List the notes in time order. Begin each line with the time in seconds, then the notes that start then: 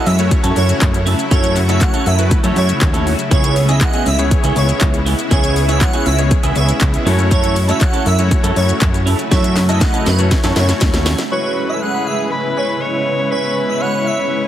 Already playing: C#3 F#3 A3 E4
0.06 F#2 E5, muted clean electric guitar stroke, open hi-hat, shaker
0.19 A3 C#4 E4 F#4 C#5, muted clean electric guitar stroke, closed hi-hat, shaker
0.31 muted clean electric guitar stroke, kick, closed hi-hat, shaker
0.43 F#2 C#4 E4 A4, closed hi-hat, shaker
0.56 F#2 C#5, muted clean electric guitar stroke, open hi-hat, shaker
0.68 muted clean electric guitar stroke, closed hi-hat, shaker
0.81 F#2, kick, clap, closed hi-hat, shaker
0.94 muted clean electric guitar stroke, closed hi-hat, shaker
1.06 C#4 E4 A4, open hi-hat, shaker
1.19 muted clean electric guitar stroke, closed hi-hat, shaker
1.31 F#2 A3 C#4 E4 F#4 A4 C#5, kick, closed hi-hat, shaker
1.44 closed hi-hat, shaker
1.56 muted clean electric guitar stroke, clap, open hi-hat, shaker
1.68 A3 C#4 E4 F#4 A4 C#5 E5, closed hi-hat, shaker
1.81 F#5, muted clean electric guitar stroke, kick, clap, closed hi-hat, shaker
1.94 C#4 E4 A4, closed hi-hat, shaker
2.06 F#2 E5, muted clean electric guitar stroke, open hi-hat, shaker
2.19 A3 C#4 E4 F#4 B4, muted clean electric guitar stroke, closed hi-hat, shaker
2.31 muted clean electric guitar stroke, kick, closed hi-hat, shaker
2.43 F#2 A3 C#4 E4 F#4 A4 C#5, closed hi-hat, shaker
2.56 F#2 C#5, muted clean electric guitar stroke, open hi-hat, shaker
2.69 muted clean electric guitar stroke, closed hi-hat, shaker
2.81 D#2, muted clean electric guitar stroke, kick, clap, closed hi-hat, shaker
2.93 C#4 E4 A4, closed hi-hat, shaker
3.06 muted clean electric guitar stroke, open hi-hat, shaker
3.18 muted clean electric guitar stroke, closed hi-hat, shaker
3.31 C#2 G#3 B3 C#4 E4 G#4 C#5, kick, closed hi-hat, shaker
3.44 closed hi-hat, shaker
3.56 muted clean electric guitar stroke, open hi-hat, shaker
3.68 B3 C#4 E4 G#4 D#5 E5, closed hi-hat, shaker
3.81 F#5, muted clean electric guitar stroke, kick, clap, closed hi-hat, shaker
3.94 B3 E4 G#4, closed hi-hat, shaker
4.06 C#2 E5, muted clean electric guitar stroke, open hi-hat, shaker
4.18 B3 C#4 E4 G#4 C#5, muted clean electric guitar stroke, closed hi-hat, shaker
4.31 muted clean electric guitar stroke, kick, closed hi-hat, shaker
4.43 C#2 B3 E4 G#4, closed hi-hat, shaker
4.56 C#2 C#5, muted clean electric guitar stroke, open hi-hat, shaker
4.69 muted clean electric guitar stroke, closed hi-hat, shaker
4.81 C#2, kick, clap, closed hi-hat, shaker
4.94 muted clean electric guitar stroke, closed hi-hat, shaker
5.06 B3 E4 G#4, open hi-hat, shaker
5.19 muted clean electric guitar stroke, closed hi-hat, shaker
5.31 C#2 B3 C#4 E4 G#4 C#5, kick, closed hi-hat, shaker
5.44 closed hi-hat, shaker
5.56 muted clean electric guitar stroke, open hi-hat, shaker
5.68 B3 C#4 E4 G#4 C#5 E5, closed hi-hat, shaker
5.81 F#5, muted clean electric guitar stroke, kick, clap, closed hi-hat, shaker
5.93 B3 E4 G#4, closed hi-hat, shaker
6.06 C#2 E5, muted clean electric guitar stroke, open hi-hat, shaker
6.18 B3 C#4 E4 G#4 C#5, muted clean electric guitar stroke, closed hi-hat, shaker
6.31 muted clean electric guitar stroke, kick, closed hi-hat, shaker
6.43 C#2 B3 C#4 E4 G#4 E5, closed hi-hat, shaker
6.56 C#2 C#5, muted clean electric guitar stroke, open hi-hat, shaker
6.69 muted clean electric guitar stroke, closed hi-hat, shaker
6.81 C#2, kick, clap, closed hi-hat, shaker
6.93 muted clean electric guitar stroke, closed hi-hat, shaker
7.06 F#2 C#3 F#3 A3 C#4 E4 F#4 A4 C#5, open hi-hat, shaker
7.18 muted clean electric guitar stroke, closed hi-hat, shaker
7.31 C#4 E4 A4 C#5, kick, closed hi-hat, shaker
7.44 closed hi-hat, shaker
7.56 muted clean electric guitar stroke, open hi-hat, shaker
7.68 A3 C#4 E4 F#4 A4 C#5 E5, closed hi-hat, shaker
7.81 F#5, muted clean electric guitar stroke, kick, clap, closed hi-hat, shaker
7.93 C#4 E4 A4, closed hi-hat, shaker
8.06 F#2 E5, muted clean electric guitar stroke, open hi-hat, shaker
8.18 A3 C#4 E4 F#4 C#5, muted clean electric guitar stroke, closed hi-hat, shaker
8.31 muted clean electric guitar stroke, kick, closed hi-hat, shaker
8.44 F#2 C#4 E4 A4, closed hi-hat, shaker
8.56 F#2 C#5, muted clean electric guitar stroke, open hi-hat, shaker
8.69 muted clean electric guitar stroke, closed hi-hat, shaker
8.81 F#2, kick, clap, closed hi-hat, shaker
8.94 muted clean electric guitar stroke, closed hi-hat, shaker
9.06 C#4 E4 A4, open hi-hat, shaker
9.19 muted clean electric guitar stroke, closed hi-hat, shaker
9.31 F#2 A3 C#4 E4 F#4 A4 C#5 E5, kick, snare, closed hi-hat, shaker
9.44 closed hi-hat, shaker
9.56 muted clean electric guitar stroke, snare, clap, open hi-hat, shaker
9.69 A3 C#4 E4 F#4 A4 D#5 E5, closed hi-hat, shaker
9.81 F#5, muted clean electric guitar stroke, kick, snare, clap, closed hi-hat, shaker
9.94 C#4 E4 A4, closed hi-hat, shaker
10.06 F#2 B4, muted clean electric guitar stroke, snare, open hi-hat, shaker
10.19 A3 C#4 E4 F#4 C#5, muted clean electric guitar stroke, closed hi-hat, shaker
10.31 muted clean electric guitar stroke, kick, snare, closed hi-hat, shaker
10.44 F#2 A3 C#4 E4 F#4 A4 C#5, snare, closed hi-hat, shaker
10.56 F#2 C#5, muted clean electric guitar stroke, snare, open hi-hat, shaker
10.69 muted clean electric guitar stroke, snare, closed hi-hat, shaker
10.81 D#2, kick, snare, clap, closed hi-hat, shaker
10.94 muted clean electric guitar stroke, snare, closed hi-hat, shaker
11.06 C#4 E4 A4, snare, open hi-hat, shaker
11.18 muted clean electric guitar stroke, snare, closed hi-hat, shaker
11.31 C#3 G#3 B3 C#4 E4 F#4 B4 C#5
11.57 B5
11.69 E5
11.74 A4
11.81 G#4 F#5
11.94 B5
12.06 E5
12.19 G#5
12.31 B4 B5
12.57 C#5 G#5
12.69 B5
12.81 C#5
13.19 C#5
13.31 B4 C#5 G#5
13.44 B5
13.69 E5
13.81 C#5 F#5 B5
13.94 C#5
14.06 E5
14.19 B5
14.44 G#5